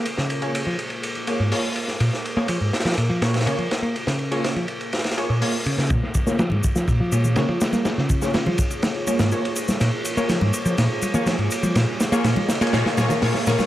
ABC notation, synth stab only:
X:1
M:4/4
L:1/16
Q:1/4=123
K:Bbm
V:1 name="Synth stab"
z3 [B,FAd] z6 [B,FAd] z [B,FAd] z3 | z3 [B,FAd] z6 [B,FAd] z [B,FAd] z3 | z3 [B,FAd] z6 [B,FAd] z [B,FAd] z3 | z3 [B,FAd] z6 [B,FAd] z [B,FAd] z3 |
z3 [B,FAd] z6 [B,FAd] z [B,FAd] z3 | z3 [B,FAd] z6 z [B,FAd] z4 | z3 [B,FAd] z3 [B,FAd] [B,FAd] z [B,FAd] z [B,FAd] z [B,FAd] z |]